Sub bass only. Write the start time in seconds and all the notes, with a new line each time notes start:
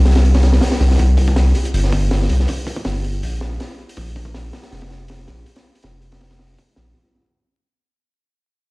Already playing: C2
0.80 C2
0.99 C2
1.73 G1
2.29 C2
2.85 G1
3.22 A#1
3.97 A#1
4.72 F1
5.28 A#1
5.84 F1
6.77 A#1